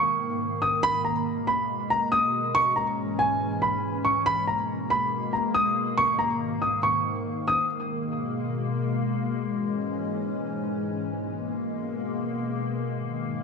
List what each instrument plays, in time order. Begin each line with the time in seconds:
Already playing: ambient pad G#2 D#3 A#3, grand piano C#6
0.62 grand piano D#6
0.83 ambient pad B2 G#3, grand piano B5
1.05 grand piano A#5
1.47 grand piano B5
1.90 grand piano A#5
2.12 grand piano D#6
2.55 ambient pad G#2 E3 C#4, grand piano C#6
2.76 grand piano A#5
3.19 grand piano G#5
3.62 grand piano B5
4.05 grand piano C#6
4.26 ambient pad B2 G#3 A#3, grand piano B5
4.47 grand piano A#5
4.90 grand piano B5
5.33 grand piano A#5
5.54 grand piano D#6
5.97 ambient pad G#2 D#3, grand piano C#6
6.19 grand piano A#5
6.62 grand piano D#6
6.83 grand piano C#6
7.48 grand piano D#6
7.69 ambient pad B2 G#3 A#3
9.40 ambient pad G#2 E3 C#4
11.12 ambient pad B2 G#3 A#3
12.83 ambient pad G#2 D#3 A#3